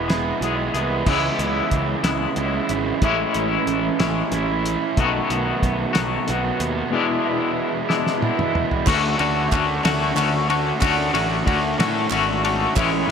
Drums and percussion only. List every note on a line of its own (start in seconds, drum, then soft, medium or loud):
0.10 snare loud
0.10 closed hi-hat medium
0.42 closed hi-hat medium
0.75 closed hi-hat medium
1.06 kick loud
1.06 crash loud
1.39 closed hi-hat medium
1.71 kick medium
1.71 closed hi-hat medium
2.04 snare loud
2.04 closed hi-hat medium
2.36 closed hi-hat medium
2.69 closed hi-hat medium
3.02 kick loud
3.02 closed hi-hat medium
3.34 closed hi-hat medium
3.67 closed hi-hat medium
4.00 snare loud
4.00 closed hi-hat medium
4.32 closed hi-hat medium
4.66 closed hi-hat medium
4.97 kick loud
4.97 closed hi-hat medium
5.30 closed hi-hat medium
5.63 kick medium
5.63 closed hi-hat medium
5.95 snare loud
5.95 closed hi-hat medium
6.28 closed hi-hat medium
6.60 closed hi-hat medium
7.90 snare medium
8.07 snare medium
8.22 high tom medium
8.39 mid tom medium
8.55 mid tom medium
8.71 floor tom medium
8.87 kick loud
8.87 clap medium
8.87 crash loud
9.19 ride medium
9.37 clap soft
9.52 kick medium
9.52 clap medium
9.52 ride medium
9.84 snare loud
9.84 clap soft
9.84 ride loud
10.17 clap medium
10.17 ride medium
10.50 ride medium
10.81 kick loud
10.81 clap medium
10.81 ride loud
11.15 ride medium
11.31 clap soft
11.47 kick medium
11.47 ride medium
11.78 snare loud
11.78 clap soft
11.78 ride loud
12.10 clap loud
12.10 ride medium
12.45 ride medium
12.76 kick loud
12.76 clap loud
12.76 ride medium